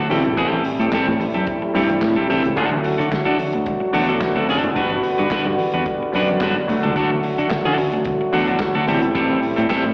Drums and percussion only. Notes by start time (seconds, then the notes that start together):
0.11 open hi-hat
0.24 closed hi-hat, low conga
0.38 kick, closed hi-hat
0.53 muted conga, high conga
0.64 open hi-hat
0.81 closed hi-hat
0.92 kick, snare, clap, closed hi-hat
1.06 muted conga, high conga
1.20 open hi-hat, high conga
1.34 closed hi-hat
1.47 kick, closed hi-hat, muted conga, low conga
1.62 muted conga
1.75 open hi-hat
1.89 closed hi-hat, high conga
2.02 kick, snare, clap, closed hi-hat, muted conga
2.16 muted conga
2.30 open hi-hat
2.44 closed hi-hat, low conga
2.57 kick, closed hi-hat
2.71 muted conga, high conga
2.84 open hi-hat
3.01 closed hi-hat
3.12 kick, snare, clap, closed hi-hat, muted conga
3.26 muted conga, high conga
3.39 open hi-hat, high conga
3.53 closed hi-hat
3.66 kick, closed hi-hat, muted conga, low conga
3.94 open hi-hat
4.08 closed hi-hat, high conga
4.21 kick, snare, clap, closed hi-hat
4.36 muted conga
4.49 open hi-hat
4.63 closed hi-hat, low conga
4.76 kick, closed hi-hat, muted conga
4.90 high conga
5.03 open hi-hat
5.19 closed hi-hat
5.31 kick, snare, clap, closed hi-hat
5.45 high conga
5.58 open hi-hat, high conga
5.72 closed hi-hat
5.86 kick, closed hi-hat, low conga
6.13 open hi-hat
6.28 closed hi-hat, high conga
6.41 kick, snare, clap, closed hi-hat
6.56 muted conga
6.69 open hi-hat
6.83 closed hi-hat, low conga
6.96 kick, closed hi-hat, muted conga
7.11 high conga
7.23 open hi-hat
7.39 closed hi-hat
7.50 kick, snare, clap, closed hi-hat
7.65 muted conga, high conga
7.78 open hi-hat, high conga
7.92 closed hi-hat
8.04 kick, closed hi-hat, low conga
8.21 muted conga
8.33 open hi-hat
8.47 closed hi-hat, high conga
8.59 kick, snare, clap, closed hi-hat
8.75 muted conga
8.88 open hi-hat
9.02 closed hi-hat, low conga
9.15 kick, closed hi-hat, muted conga
9.30 high conga
9.42 open hi-hat
9.58 closed hi-hat
9.70 kick, snare, clap, closed hi-hat, muted conga
9.85 muted conga